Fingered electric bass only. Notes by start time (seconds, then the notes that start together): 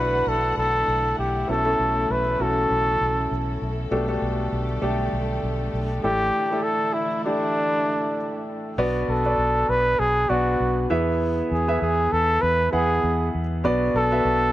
Already playing: B1
0.27 B1
0.57 B1
0.88 B1
1.19 B1
1.49 B1
1.79 B1
2.10 B1
2.40 B1
2.71 B1
3.01 B1
3.31 B1
3.62 B1
3.91 B1
4.22 B1
4.53 B1
4.82 B1
5.13 B1
5.43 B1
5.74 B1
6.04 A1
8.78 B1
9.08 B1
9.38 B1
9.69 B1
10.00 B1
10.30 B1
10.60 B1
10.91 E2
11.52 E2
11.82 E2
12.13 E2
12.43 E2
12.73 E2
13.04 E2
13.35 E2
13.64 B1
13.94 B1
14.25 B1